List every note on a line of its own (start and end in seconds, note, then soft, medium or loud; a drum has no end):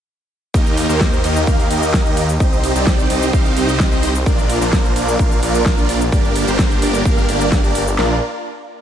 0.54 0.87 D#2 loud
0.54 0.86 A#3 medium
0.54 0.86 D#4 medium
0.54 0.86 G4 medium
0.54 0.86 A#4 medium
0.54 0.86 D#5 medium
0.54 kick loud
0.54 ride medium
0.54 shaker medium
0.67 shaker soft
0.77 open hi-hat loud
0.77 ride medium
0.89 1.22 D#2 loud
0.89 1.21 A#3 medium
0.89 1.21 D#4 medium
0.89 1.21 G4 medium
0.89 1.21 A#4 medium
0.89 1.21 C5 loud
0.89 shaker medium
1.01 kick loud
1.01 snare loud
1.01 ride medium
1.01 shaker medium
1.13 shaker soft
1.24 1.45 D#2 loud
1.24 1.44 A#3 medium
1.24 1.44 D#4 medium
1.24 1.44 G4 medium
1.24 1.44 A#4 medium
1.24 1.44 D#5 medium
1.24 open hi-hat loud
1.24 ride medium
1.36 shaker medium
1.47 1.68 D#2 loud
1.47 1.68 A#3 loud
1.47 1.68 D#4 medium
1.47 1.68 G4 medium
1.47 1.68 A#4 medium
1.47 1.68 F5 loud
1.47 kick loud
1.47 ride medium
1.47 shaker medium
1.60 shaker soft
1.70 2.03 D#2 loud
1.70 2.03 A#3 medium
1.70 2.03 D#4 medium
1.70 2.03 G4 medium
1.70 2.03 A#4 medium
1.70 2.03 D#5 loud
1.70 open hi-hat loud
1.70 ride medium
1.83 shaker medium
1.94 kick loud
1.94 snare loud
1.94 ride medium
1.94 shaker medium
2.05 2.38 D#2 medium
2.05 2.23 A#3 loud
2.05 2.23 D#4 medium
2.05 2.23 G4 medium
2.05 2.23 A#4 medium
2.05 2.23 D#5 loud
2.05 shaker soft
2.17 open hi-hat loud
2.17 ride medium
2.29 shaker medium
2.40 2.73 C2 medium
2.40 2.72 C4 medium
2.40 2.72 D#4 medium
2.40 2.72 G4 medium
2.40 2.72 C5 medium
2.40 2.72 D#5 medium
2.40 kick loud
2.40 ride medium
2.40 shaker medium
2.53 shaker soft
2.64 open hi-hat loud
2.64 ride medium
2.75 3.08 C2 loud
2.75 3.07 C4 medium
2.75 3.07 D#4 medium
2.75 3.07 G4 medium
2.75 3.07 C5 medium
2.75 3.07 D5 loud
2.75 shaker medium
2.87 kick loud
2.87 snare loud
2.87 ride medium
2.87 shaker medium
2.99 shaker soft
3.10 3.31 C2 loud
3.10 3.30 C4 medium
3.10 3.30 D#4 medium
3.10 3.30 G4 medium
3.10 3.30 C5 medium
3.10 3.30 D#5 medium
3.10 open hi-hat loud
3.10 ride medium
3.22 shaker medium
3.33 3.54 C2 loud
3.33 3.54 C4 loud
3.33 3.54 D#4 medium
3.33 3.54 G4 medium
3.33 3.54 C5 medium
3.33 3.54 F5 loud
3.33 kick loud
3.33 ride medium
3.33 shaker medium
3.46 shaker soft
3.57 3.89 C2 loud
3.57 3.89 C4 medium
3.57 3.89 D#4 medium
3.57 3.89 G4 medium
3.57 3.89 C5 medium
3.57 3.89 D#5 loud
3.57 open hi-hat loud
3.57 ride medium
3.69 shaker medium
3.80 kick loud
3.80 snare loud
3.80 ride medium
3.80 shaker medium
3.91 4.24 C2 loud
3.91 4.09 C4 loud
3.91 4.09 D#4 medium
3.91 4.09 G4 medium
3.91 4.09 C5 medium
3.91 4.09 D#5 loud
3.91 shaker soft
4.03 open hi-hat loud
4.03 ride medium
4.15 shaker medium
4.26 4.59 A#1 loud
4.26 4.58 A#3 medium
4.26 4.58 D4 medium
4.26 4.58 F4 medium
4.26 4.58 A#4 medium
4.26 4.58 D5 medium
4.26 kick loud
4.26 ride medium
4.26 shaker medium
4.39 shaker soft
4.50 open hi-hat loud
4.50 ride medium
4.61 4.94 A#1 loud
4.61 4.93 A#3 medium
4.61 4.93 D4 medium
4.61 4.93 F4 medium
4.61 4.93 A#4 medium
4.61 4.93 C5 medium
4.61 shaker medium
4.73 kick loud
4.73 snare loud
4.73 ride medium
4.73 shaker medium
4.85 shaker soft
4.96 5.17 A#1 medium
4.96 5.16 A#3 medium
4.96 5.16 D4 medium
4.96 5.16 F4 medium
4.96 5.16 A#4 medium
4.96 5.16 D5 medium
4.96 open hi-hat loud
4.96 ride medium
5.08 shaker medium
5.19 5.40 A#1 medium
5.19 5.40 A#3 loud
5.19 5.40 D4 medium
5.19 5.40 F4 medium
5.19 5.40 A#4 medium
5.19 5.40 F5 loud
5.19 kick loud
5.19 ride medium
5.19 shaker medium
5.32 shaker soft
5.42 5.75 A#1 loud
5.42 5.75 A#3 medium
5.42 5.75 D4 medium
5.42 5.75 F4 medium
5.42 5.75 A#4 medium
5.42 5.75 D5 loud
5.42 open hi-hat loud
5.42 ride medium
5.55 shaker medium
5.66 kick loud
5.66 snare loud
5.66 ride medium
5.66 shaker medium
5.77 6.10 A#1 loud
5.77 5.95 A#3 loud
5.77 5.95 D4 medium
5.77 5.95 F4 medium
5.77 5.95 A#4 medium
5.77 5.95 D5 loud
5.77 shaker soft
5.89 open hi-hat loud
5.89 ride medium
6.01 shaker medium
6.12 6.45 G1 loud
6.12 6.44 A#3 medium
6.12 6.44 D4 medium
6.12 6.44 G4 medium
6.12 6.44 A#4 medium
6.12 6.44 D5 medium
6.12 kick loud
6.12 ride medium
6.12 shaker medium
6.25 shaker soft
6.36 open hi-hat loud
6.36 ride medium
6.47 6.80 G1 loud
6.47 6.79 A#3 medium
6.47 6.79 D4 medium
6.47 6.79 G4 medium
6.47 6.79 A#4 medium
6.47 6.79 C5 loud
6.47 shaker medium
6.59 kick loud
6.59 snare loud
6.59 ride medium
6.59 shaker medium
6.71 shaker soft
6.82 7.03 G1 loud
6.82 7.02 A#3 medium
6.82 7.02 D4 medium
6.82 7.02 G4 medium
6.82 7.02 A#4 medium
6.82 7.02 D5 medium
6.82 open hi-hat loud
6.82 ride medium
6.95 shaker medium
7.05 7.26 G1 loud
7.05 7.26 A#3 loud
7.05 7.26 D4 medium
7.05 7.26 G4 medium
7.05 7.26 A#4 medium
7.05 7.26 F5 loud
7.05 kick loud
7.05 ride medium
7.05 shaker medium
7.17 snare soft
7.17 shaker soft
7.29 7.61 G1 loud
7.29 7.61 A#3 medium
7.29 7.61 D4 medium
7.29 7.61 G4 medium
7.29 7.61 A#4 medium
7.29 7.61 D5 loud
7.29 open hi-hat loud
7.29 ride medium
7.41 shaker medium
7.52 kick loud
7.52 snare loud
7.52 ride medium
7.52 shaker medium
7.64 7.96 G1 loud
7.64 7.81 A#3 loud
7.64 7.81 D4 medium
7.64 7.81 G4 medium
7.64 7.81 A#4 medium
7.64 7.81 D5 loud
7.64 shaker soft
7.75 open hi-hat loud
7.75 ride medium
7.88 shaker medium
7.98 8.20 A#1 loud
7.98 8.16 A#3 medium
7.98 8.16 D4 medium
7.98 8.16 F4 medium
7.98 8.16 A#4 medium
7.98 8.16 D5 loud
7.98 snare loud
7.98 clap medium